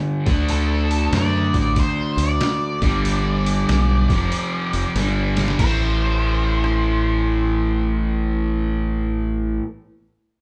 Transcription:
0.00 0.25 G2 medium
0.00 0.25 D3 medium
0.00 0.27 G3 medium
0.26 1.09 D2 medium
0.26 2.79 D3 medium
0.26 2.80 A3 medium
0.26 2.81 D4 medium
0.26 kick loud
0.26 open hi-hat soft
0.49 1.16 A4 medium
0.49 open hi-hat medium
0.91 open hi-hat soft
1.12 1.50 F#2 medium
1.12 1.80 D5 loud
1.12 snare medium
1.12 open hi-hat medium
1.54 1.75 A1 medium
1.54 kick medium
1.54 open hi-hat soft
1.76 2.21 C5 medium
1.76 kick medium
1.76 open hi-hat medium
2.17 2.38 D2 medium
2.17 4.92 D5 medium
2.17 open hi-hat medium
2.41 snare loud
2.41 open hi-hat medium
2.82 3.64 G1 medium
2.82 4.07 G2 medium
2.82 4.08 D3 medium
2.82 4.09 G3 medium
2.82 kick loud
2.82 open hi-hat soft
3.05 open hi-hat medium
3.46 open hi-hat soft
3.69 4.06 B1 medium
3.69 snare medium
3.69 open hi-hat medium
4.09 4.30 F1 medium
4.09 4.94 F2 medium
4.09 4.95 C3 medium
4.09 kick medium
4.09 open hi-hat soft
4.14 4.96 F3 loud
4.32 open hi-hat medium
4.73 4.83 F1 medium
4.73 open hi-hat soft
4.95 5.55 G1 medium
4.95 5.58 G2 medium
4.95 5.59 D3 medium
4.95 snare medium
4.95 open hi-hat medium
5.00 5.60 G3 medium
5.37 snare medium
5.37 open hi-hat soft
5.48 snare medium
5.59 9.59 A1 medium
5.59 9.63 A2 medium
5.59 9.64 E3 medium
5.59 8.89 C5 medium
5.59 kick loud
5.59 crash medium
5.63 9.65 A3 medium
6.64 cross-stick medium

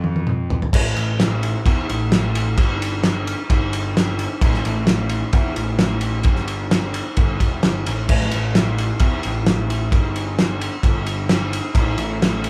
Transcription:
0.00 0.57 F2 loud
0.00 high tom medium
0.16 high tom medium
0.27 mid tom medium
0.50 floor tom loud
0.62 floor tom medium
0.73 0.92 A1 loud
0.73 kick loud
0.73 crash loud
0.96 1.54 A1 loud
0.96 ride medium
1.20 snare loud
1.20 ride loud
1.43 ride medium
1.66 1.85 E2 medium
1.66 kick loud
1.66 ride loud
1.89 2.58 A1 loud
1.89 ride medium
2.12 snare loud
2.12 ride loud
2.35 ride medium
2.58 3.34 G1 loud
2.58 kick loud
2.58 ride loud
2.82 ride medium
3.03 snare loud
3.03 ride loud
3.27 ride medium
3.50 4.26 G1 medium
3.50 kick loud
3.50 ride loud
3.73 ride medium
3.97 snare loud
3.97 ride loud
4.19 ride medium
4.41 4.61 A1 loud
4.41 kick loud
4.41 ride loud
4.54 snare soft
4.65 5.22 A1 loud
4.65 ride medium
4.87 snare loud
4.87 ride loud
5.09 ride medium
5.33 5.52 E2 loud
5.33 kick loud
5.33 ride loud
5.56 6.25 A1 loud
5.56 ride medium
5.79 snare loud
5.79 ride loud
6.01 ride medium
6.23 7.01 G1 loud
6.23 kick loud
6.23 ride loud
6.36 snare soft
6.48 ride medium
6.71 snare loud
6.71 ride loud
6.94 ride medium
7.17 7.36 G1 loud
7.17 kick loud
7.17 ride loud
7.40 7.61 E1 medium
7.40 kick medium
7.40 ride medium
7.63 7.84 G1 medium
7.63 snare loud
7.63 ride loud
7.86 8.08 A1 medium
7.86 ride medium
8.09 8.28 A1 loud
8.09 kick loud
8.09 crash loud
8.21 snare soft
8.31 8.90 A1 loud
8.31 ride medium
8.55 snare loud
8.55 ride loud
8.78 ride medium
9.00 9.19 E2 loud
9.00 kick loud
9.00 ride loud
9.23 9.92 A1 loud
9.23 ride medium
9.46 snare loud
9.46 ride loud
9.70 ride medium
9.92 10.68 G1 loud
9.92 kick loud
9.92 ride loud
10.16 ride medium
10.39 snare loud
10.39 ride loud
10.61 ride medium
10.83 11.60 G1 medium
10.83 kick loud
10.83 ride loud
11.06 ride medium
11.29 snare loud
11.29 ride loud
11.53 ride medium
11.75 11.94 A1 loud
11.75 kick loud
11.75 ride loud
11.98 12.50 A1 loud
11.98 ride medium
12.22 snare loud
12.22 ride loud
12.44 ride medium

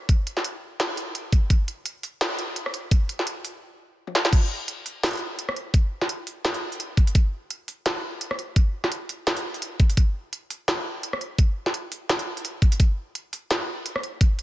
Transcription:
0.09 kick loud
0.09 closed hi-hat medium
0.27 closed hi-hat medium
0.37 snare soft
0.44 closed hi-hat medium
0.80 snare loud
0.80 closed hi-hat medium
0.97 closed hi-hat medium
1.15 closed hi-hat medium
1.32 kick loud
1.32 closed hi-hat medium
1.50 kick loud
1.50 closed hi-hat medium
1.68 closed hi-hat medium
1.86 closed hi-hat medium
2.03 open hi-hat medium
2.21 snare loud
2.21 closed hi-hat medium
2.39 closed hi-hat medium
2.56 closed hi-hat medium
2.66 cross-stick medium
2.74 closed hi-hat medium
2.91 kick loud
2.91 closed hi-hat medium
3.09 closed hi-hat medium
3.19 snare soft
3.27 closed hi-hat medium
3.45 open hi-hat medium
4.07 high tom medium
4.15 snare medium
4.25 snare medium
4.33 kick loud
4.33 closed hi-hat medium
4.33 crash loud
4.68 closed hi-hat medium
4.86 open hi-hat medium
5.03 snare loud
5.03 closed hi-hat medium
5.06 closed hi-hat medium
5.08 closed hi-hat medium
5.11 closed hi-hat soft
5.13 closed hi-hat soft
5.15 closed hi-hat soft
5.17 closed hi-hat soft
5.19 closed hi-hat soft
5.39 closed hi-hat medium
5.49 cross-stick medium
5.56 closed hi-hat soft
5.74 kick loud
5.74 closed hi-hat medium
6.01 snare soft
6.09 closed hi-hat medium
6.27 open hi-hat medium
6.45 snare loud
6.45 closed hi-hat medium
6.54 open hi-hat medium
6.72 open hi-hat soft
6.80 closed hi-hat medium
6.97 kick loud
6.97 closed hi-hat soft
7.07 open hi-hat medium
7.15 kick loud
7.15 closed hi-hat medium
7.51 closed hi-hat medium
7.68 open hi-hat medium
7.86 snare loud
7.86 closed hi-hat medium
8.21 closed hi-hat medium
8.31 cross-stick medium
8.39 closed hi-hat soft
8.56 kick loud
8.56 closed hi-hat medium
8.84 cross-stick soft
8.84 snare soft
8.92 closed hi-hat medium
9.09 open hi-hat medium
9.27 snare loud
9.27 closed hi-hat medium
9.37 open hi-hat medium
9.54 open hi-hat soft
9.62 closed hi-hat medium
9.80 kick loud
9.80 closed hi-hat soft
9.90 open hi-hat medium
9.97 kick loud
9.97 closed hi-hat medium
10.33 closed hi-hat medium
10.50 open hi-hat medium
10.68 snare loud
10.68 closed hi-hat medium
11.03 closed hi-hat medium
11.13 cross-stick medium
11.21 closed hi-hat soft
11.38 kick loud
11.38 closed hi-hat medium
11.66 snare soft
11.74 closed hi-hat medium
11.92 open hi-hat medium
12.09 snare loud
12.09 closed hi-hat medium
12.19 open hi-hat medium
12.37 open hi-hat soft
12.45 closed hi-hat medium
12.62 kick loud
12.62 closed hi-hat soft
12.72 open hi-hat medium
12.80 kick loud
12.80 closed hi-hat medium
13.15 closed hi-hat medium
13.33 open hi-hat medium
13.51 snare loud
13.51 closed hi-hat medium
13.86 closed hi-hat medium
13.96 cross-stick medium
14.03 closed hi-hat soft
14.21 kick loud
14.21 closed hi-hat medium
14.39 closed hi-hat soft

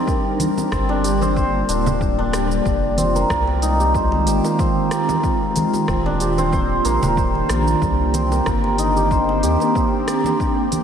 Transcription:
0.00 2.62 G3 medium
0.00 3.15 A#3 medium
0.00 0.71 C4 medium
0.00 2.62 D4 medium
0.00 0.95 D#4 medium
0.00 1.04 G4 medium
0.00 0.97 A#4 medium
0.00 2.62 A#4 medium
0.00 1.36 C5 medium
0.07 2.63 A#3 medium
0.07 2.63 F4 medium
0.07 kick loud
0.07 shaker soft
0.40 open hi-hat medium
0.40 high conga medium
0.40 shaker medium
0.57 high bongo medium
0.57 high conga soft
0.57 shaker soft
0.72 1.63 G1 medium
0.72 1.21 C4 medium
0.72 kick loud
0.72 cross-stick medium
0.72 shaker soft
0.89 1.68 D4 loud
0.89 high bongo medium
1.04 2.33 G4 medium
1.04 open hi-hat medium
1.04 shaker medium
1.21 2.97 C4 loud
1.21 high conga medium
1.21 shaker soft
1.36 3.94 C5 medium
1.36 kick loud
1.36 shaker soft
1.69 2.60 D1 loud
1.69 2.18 D4 medium
1.69 open hi-hat medium
1.69 shaker medium
1.86 low conga loud
1.86 shaker soft
2.01 kick loud
2.01 shaker soft
2.18 3.68 D4 loud
2.18 high bongo soft
2.33 3.79 G4 medium
2.33 cross-stick medium
2.33 open hi-hat medium
2.33 high bongo medium
2.33 shaker medium
2.51 shaker soft
2.65 3.25 F1 medium
2.65 10.36 D#3 medium
2.65 5.21 G#3 medium
2.65 5.21 C4 medium
2.65 7.78 F4 medium
2.65 kick loud
2.65 shaker soft
2.98 4.59 C4 medium
2.98 open hi-hat medium
2.98 high conga medium
2.98 shaker medium
3.15 4.44 A#3 medium
3.15 high bongo soft
3.15 high conga soft
3.15 shaker soft
3.30 4.28 C2 medium
3.30 6.13 A#4 medium
3.30 kick loud
3.30 cross-stick medium
3.30 shaker soft
3.47 high bongo soft
3.62 6.12 D#4 medium
3.62 open hi-hat medium
3.62 shaker medium
3.80 4.26 G4 medium
3.80 shaker soft
3.94 6.53 C5 medium
3.94 kick loud
3.94 shaker soft
4.12 high bongo medium
4.27 4.40 G#1 medium
4.27 4.91 G4 medium
4.27 open hi-hat medium
4.27 shaker medium
4.44 6.85 A#3 medium
4.44 high bongo medium
4.44 shaker soft
4.59 5.88 C4 medium
4.59 kick loud
4.59 shaker soft
4.91 6.20 G4 medium
4.91 cross-stick medium
4.91 open hi-hat medium
4.91 shaker medium
5.09 high bongo medium
5.09 high conga medium
5.09 shaker soft
5.23 10.83 A#3 medium
5.23 10.83 D4 medium
5.23 10.83 G4 medium
5.23 kick loud
5.23 shaker soft
5.56 open hi-hat medium
5.56 high conga medium
5.56 shaker medium
5.73 high bongo medium
5.73 high conga soft
5.73 shaker soft
5.88 6.79 D#1 medium
5.88 6.38 C4 medium
5.88 kick loud
5.88 cross-stick medium
5.88 shaker soft
6.06 8.85 D4 loud
6.06 high bongo medium
6.20 8.96 G4 medium
6.20 open hi-hat medium
6.20 shaker medium
6.38 8.14 C4 loud
6.38 high conga medium
6.38 shaker soft
6.53 7.17 C5 loud
6.53 kick loud
6.53 shaker soft
6.85 6.99 A#1 medium
6.85 8.31 A#3 loud
6.85 open hi-hat medium
6.85 shaker medium
7.02 7.44 D#1 medium
7.02 8.46 A#4 medium
7.02 low conga loud
7.02 shaker soft
7.17 9.10 C5 medium
7.17 kick loud
7.17 shaker soft
7.35 high bongo soft
7.49 7.75 A#1 loud
7.49 cross-stick medium
7.49 open hi-hat medium
7.49 high bongo medium
7.49 shaker medium
7.67 shaker soft
7.82 8.41 C2 loud
7.82 10.37 C4 medium
7.82 kick loud
7.82 shaker soft
8.14 9.75 C4 medium
8.14 open hi-hat medium
8.14 high conga medium
8.14 shaker medium
8.31 9.60 A#3 medium
8.31 high bongo medium
8.31 high conga soft
8.31 shaker soft
8.46 9.45 G1 medium
8.46 10.83 A#4 medium
8.46 kick loud
8.46 cross-stick medium
8.46 shaker soft
8.64 high bongo soft
8.78 10.83 D#4 medium
8.78 open hi-hat medium
8.78 shaker medium
8.96 9.42 G4 medium
8.96 shaker soft
9.11 10.83 C5 medium
9.11 kick loud
9.11 shaker soft
9.29 high bongo medium
9.43 9.57 D#2 medium
9.43 10.07 G4 medium
9.43 open hi-hat medium
9.43 shaker medium
9.60 10.83 A#3 medium
9.60 high bongo soft
9.60 shaker soft
9.75 10.83 C4 medium
9.75 kick loud
9.75 shaker soft
10.07 10.83 G4 medium
10.07 cross-stick medium
10.07 open hi-hat medium
10.07 shaker medium
10.24 high bongo medium
10.24 high conga medium
10.24 shaker soft
10.40 10.83 F3 medium
10.40 10.83 G3 medium
10.40 kick loud
10.40 shaker soft
10.72 open hi-hat medium
10.72 high conga medium
10.72 shaker medium

